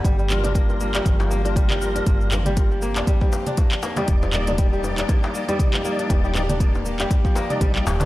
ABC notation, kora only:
X:1
M:4/4
L:1/16
Q:"Swing 16ths" 1/4=119
K:Gm
V:1 name="Kora"
G, G, z D B, z B, G, z F, B, D G, G, z D | B, z B, G, z F, B, D G, G, z D B, z B, G, | z F, B, D G, G, z D B, z B, G, z F, B, D | G, G, z D B, z B, G, z F, B, D G, G, z D |]